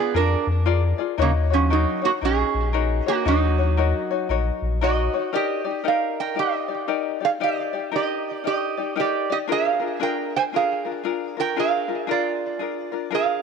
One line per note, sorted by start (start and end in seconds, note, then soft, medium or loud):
0.00 0.15 B3 medium
0.00 0.13 F4 soft
0.00 0.14 G#4 soft
0.00 0.16 G#4 medium
0.00 0.14 D5 medium
0.14 0.36 F2 medium
0.14 0.46 D4 medium
0.14 0.64 F4 medium
0.14 0.65 G#4 medium
0.14 0.65 A#4 medium
0.14 0.46 A#4 medium
0.14 0.66 D5 medium
0.47 0.93 F2 loud
0.66 0.98 F4 loud
0.66 0.98 G#4 medium
0.66 0.98 A#4 medium
0.66 0.97 D5 medium
0.98 1.18 F4 medium
0.98 1.18 G#4 medium
0.98 1.18 D5 medium
1.18 1.86 D#2 loud
1.18 1.51 D#4 loud
1.18 1.50 F#4 medium
1.18 1.50 A#4 medium
1.18 1.49 C#5 medium
1.22 1.30 C#3 medium
1.22 1.30 A#3 medium
1.50 1.70 F3 medium
1.50 1.72 C#4 medium
1.50 1.69 D#4 soft
1.50 1.70 F#4 medium
1.50 1.70 C#5 medium
1.70 2.02 F#3 medium
1.70 2.03 D#4 medium
1.70 2.05 D#4 medium
1.70 2.02 F#4 medium
1.70 2.03 A#4 medium
1.70 2.00 C#5 medium
2.02 2.10 A#3 medium
2.02 2.21 D#4 soft
2.02 2.22 F#4 medium
2.02 2.10 F#4 loud
2.02 2.21 C#5 medium
2.21 2.43 A#1 medium
2.21 3.04 C#4 medium
2.21 2.73 D#4 medium
2.21 2.73 F#4 medium
2.21 3.08 G#4 loud
2.21 2.72 A#4 medium
2.21 2.73 C#5 medium
2.54 3.01 A#1 loud
2.73 3.06 D#4 medium
2.73 3.06 F#4 medium
2.73 3.06 A#4 medium
2.73 3.05 C#5 medium
3.06 3.26 A#3 medium
3.06 3.24 D#4 soft
3.06 3.25 F#4 medium
3.06 3.27 F#4 medium
3.06 3.25 C#5 medium
3.25 3.93 D#2 medium
3.25 4.79 F#3 medium
3.25 3.58 D#4 medium
3.25 4.78 D#4 medium
3.25 3.58 F#4 medium
3.25 3.58 A#4 medium
3.25 3.57 C#5 medium
3.58 3.76 D#4 soft
3.58 3.77 F#4 medium
3.58 3.78 C#5 medium
3.77 4.10 D#4 medium
3.77 4.10 F#4 medium
3.77 4.10 A#4 medium
3.77 4.09 C#5 medium
4.11 4.29 D#4 medium
4.11 4.29 F#4 medium
4.11 4.30 C#5 medium
4.29 4.50 A#1 loud
4.29 4.82 D#4 medium
4.29 4.81 F#4 medium
4.29 4.81 A#4 medium
4.29 4.81 C#5 medium
4.62 5.08 A#1 loud
4.81 5.14 D#4 medium
4.81 5.14 F#4 loud
4.81 5.31 F#4 medium
4.81 5.14 A#4 medium
4.81 5.12 C#5 medium
4.81 5.34 D#5 medium
5.14 5.32 D#4 medium
5.14 5.32 F#4 soft
5.14 5.33 C#5 medium
5.33 5.65 D#4 medium
5.33 5.64 G4 medium
5.33 5.83 G4 medium
5.33 5.65 A#4 medium
5.33 5.63 D5 medium
5.33 5.87 D#5 medium
5.64 5.83 D#4 soft
5.64 5.83 G4 soft
5.64 5.84 D5 medium
5.84 6.35 D#4 medium
5.84 6.35 G4 medium
5.84 6.34 A#4 medium
5.84 6.36 D5 medium
5.88 6.17 A#4 medium
5.88 6.20 F5 medium
6.20 6.37 A#4 medium
6.20 6.39 G5 medium
6.35 6.68 D#4 medium
6.35 6.67 G4 medium
6.35 6.68 A#4 medium
6.35 6.67 D5 medium
6.39 7.18 G4 medium
6.39 7.25 D#5 medium
6.68 6.87 D#4 soft
6.68 6.87 G4 soft
6.68 6.88 D5 soft
6.88 7.21 D#4 medium
6.88 7.20 G4 medium
6.88 7.21 A#4 medium
6.88 7.19 D5 medium
7.20 7.39 D#4 soft
7.20 7.40 G4 soft
7.20 7.40 D5 medium
7.25 7.30 G#4 medium
7.25 7.30 F5 medium
7.40 7.73 D#4 medium
7.40 7.73 G4 medium
7.40 7.73 A#4 medium
7.40 7.72 D5 medium
7.40 7.95 D5 medium
7.44 7.91 G4 medium
7.73 7.91 D#4 soft
7.73 7.91 G4 soft
7.73 7.92 D5 medium
7.92 8.43 D#4 medium
7.92 8.43 G4 medium
7.92 8.44 A#4 medium
7.96 8.42 G4 medium
7.96 8.34 D#5 medium
8.34 8.46 D5 medium
8.44 8.77 D#4 medium
8.44 8.77 G4 medium
8.44 8.94 G4 medium
8.44 8.76 A#4 medium
8.44 8.76 D5 medium
8.44 8.99 D#5 medium
8.77 8.95 D#4 soft
8.77 8.95 G4 soft
8.77 8.96 D5 medium
8.96 9.29 D#4 medium
8.96 9.29 G4 medium
8.96 9.28 A#4 medium
8.96 9.29 D5 medium
9.00 9.28 G4 medium
9.00 9.32 D5 medium
9.30 9.48 D#4 soft
9.30 9.48 G4 soft
9.30 9.37 G4 medium
9.30 9.48 D5 medium
9.30 9.37 D#5 medium
9.47 9.81 D4 medium
9.47 9.80 F4 medium
9.47 9.80 G#4 medium
9.47 9.79 A#4 loud
9.52 9.98 G#4 medium
9.52 10.02 F5 loud
9.80 9.99 D4 medium
9.80 9.99 F4 soft
9.80 9.99 A#4 medium
10.00 10.52 D4 medium
10.00 10.52 F4 medium
10.00 10.51 G#4 medium
10.00 10.54 A#4 medium
10.00 10.32 A#4 medium
10.00 10.35 G5 medium
10.36 10.42 C5 medium
10.36 10.41 G#5 medium
10.53 10.85 D4 medium
10.53 10.85 F4 medium
10.53 10.85 G#4 medium
10.53 11.34 G#4 medium
10.53 10.84 A#4 medium
10.53 11.40 F5 medium
10.85 11.03 D4 soft
10.85 11.04 F4 soft
10.85 11.04 A#4 soft
11.04 11.37 D4 medium
11.04 11.37 F4 medium
11.04 11.36 G#4 medium
11.04 11.36 A#4 medium
11.37 11.55 D4 soft
11.37 11.56 F4 soft
11.37 11.56 A#4 soft
11.37 11.56 A#4 medium
11.37 11.58 G5 loud
11.56 11.88 D4 medium
11.56 11.88 F4 medium
11.56 11.88 G#4 medium
11.56 12.06 G#4 medium
11.56 11.87 A#4 medium
11.56 12.11 F5 medium
11.88 12.06 D4 soft
11.88 12.07 F4 medium
11.88 12.07 A#4 medium
12.07 12.59 D4 medium
12.07 12.59 F4 medium
12.07 13.09 F4 medium
12.07 12.58 G#4 medium
12.07 12.61 A#4 medium
12.11 13.16 D5 medium
12.59 12.92 D4 medium
12.59 12.91 F4 medium
12.59 12.92 G#4 medium
12.59 12.91 A#4 medium
12.92 13.10 D4 soft
12.92 13.10 F4 medium
12.92 13.11 A#4 medium
13.10 13.42 D4 medium
13.10 13.42 F4 medium
13.10 13.42 G#4 medium
13.10 13.42 A#4 medium
13.15 13.42 G#4 medium
13.15 13.42 F5 medium